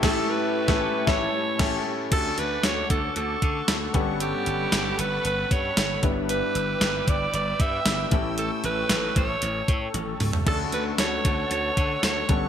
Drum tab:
CC |x-----------x---|x---------------|----------------|----------------|
HH |----------------|x-x-x-x-x-x-x-x-|x-x-x-x-x-x-x-x-|x-x-x-x-x-x-x-x-|
TB |----------------|----x-------x---|----x-------x---|----x-------x---|
SD |o----o--o---o---|----o-------o---|----o-------o---|----o-------o---|
T1 |----------------|----------------|----------------|----------------|
T2 |----------------|----------------|----------------|----------------|
FT |----------------|----------------|----------------|----------------|
BD |o----o--o---o---|o-----o---o---o-|----------o---o-|------o---o---o-|

CC |----------------|x---------------|
HH |x-x-x-x-x-x-x-o-|--x-x-x-x-x-x-x-|
TB |----x-----------|----x-------x---|
SD |----o-----------|----o-------o---|
T1 |------------o---|----------------|
T2 |--------------o-|----------------|
FT |---------------o|----------------|
BD |------o---o-----|o-----o---o---o-|